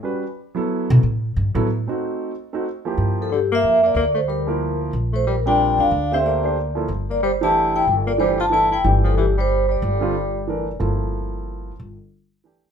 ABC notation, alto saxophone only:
X:1
M:3/4
L:1/8
Q:"Swing" 1/4=184
K:F#phr
V:1 name="Alto saxophone"
z6 | z6 | z6 | [K:Gdor] z F, D, B,2 B, |
B, A, G,3 z | z A, G, D2 D- | D C B,3 z | z B, G, E2 E |
z B, G, F E E | z F, E, G,2 G,- | G,4- G, z | z6 |
z6 |]